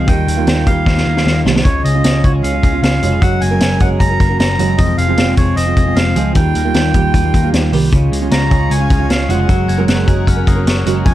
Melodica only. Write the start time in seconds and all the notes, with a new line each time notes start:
0.07 G5
0.66 F5
1.64 C#5
1.84 D#5
2.23 C#5
2.42 F5
2.82 F5
3.21 F#5
3.41 G#5
3.80 F#5
3.99 A#5
4.39 A#5
4.77 D#5
4.97 F5
5.37 C#5
5.56 D#5
5.96 F5
6.36 G5
8.31 A#5
8.71 G#5
9.10 F5
9.30 F#5
11.05 G#5